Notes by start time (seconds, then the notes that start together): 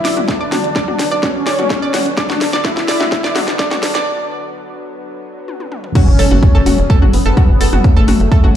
Already playing: D3 F#3 B3 E4
0.05 F#1 D5, snare, open hi-hat
0.17 F#1 F#4, closed hi-hat, mid tom
0.28 D4, kick, snare, closed hi-hat
0.41 F#1 D5
0.52 F#1 F#4, snare, open hi-hat, mid tom
0.64 F#1, closed hi-hat
0.76 D5, kick, snare, closed hi-hat
0.88 F#1 F#4, mid tom
0.99 F#1, snare, open hi-hat
1.11 F#1 D5
1.23 C#4 F#4, kick, snare, closed hi-hat, mid tom
1.35 A1
1.47 A1 D5, snare, open hi-hat
1.59 A1 F#4, closed hi-hat, mid tom
1.70 kick, snare, closed hi-hat
1.82 F#1 D5
1.94 F#1 F#4, snare, open hi-hat, mid tom
2.06 F#1, closed hi-hat
2.17 D4 D5, kick, snare, closed hi-hat
2.30 F#1 F#4, snare, mid tom
2.41 F#1, snare, open hi-hat
2.53 F#1 D5, snare, closed hi-hat
2.65 E4 F#4, kick, snare, closed hi-hat, mid tom
2.77 E1, snare
2.88 E1 D5, snare, open hi-hat
3.00 E1 F#4, snare, closed hi-hat, mid tom
3.12 kick, snare, closed hi-hat
3.24 F#1 D5, snare
3.35 F#1 D4 F#4, snare, open hi-hat, mid tom
3.48 F#1, snare, closed hi-hat
3.59 D5, kick, snare, closed hi-hat
3.71 F#1 F#4, snare, mid tom
3.83 F#1, snare, open hi-hat
3.95 F#1 D5, snare, closed hi-hat
5.48 high tom
5.60 high tom
5.72 mid tom
5.84 mid tom
5.95 F#3 C#4 F#4 G#4, kick, closed hi-hat, mid tom, crash, impact
6.08 F#1
6.19 F#1 A4, open hi-hat
6.31 F#1 F#4, closed hi-hat, mid tom
6.43 C#4, kick, closed hi-hat
6.55 E1 A4
6.66 E1 F#4, open hi-hat, mid tom
6.78 E1, closed hi-hat
6.90 A4, kick, closed hi-hat
7.02 F#1 F#4, mid tom
7.13 F#1 B3, open hi-hat
7.26 F#1 A4, closed hi-hat
7.37 F#4, kick, closed hi-hat, mid tom
7.49 F#1
7.61 F#1 A4, open hi-hat
7.73 F#1 F#4, closed hi-hat, mid tom
7.84 A3, kick, closed hi-hat
7.96 F#1 A4
8.08 F#1 F#4, open hi-hat, mid tom
8.20 F#1, closed hi-hat
8.32 A4, kick, closed hi-hat
8.44 F#1 F#4, mid tom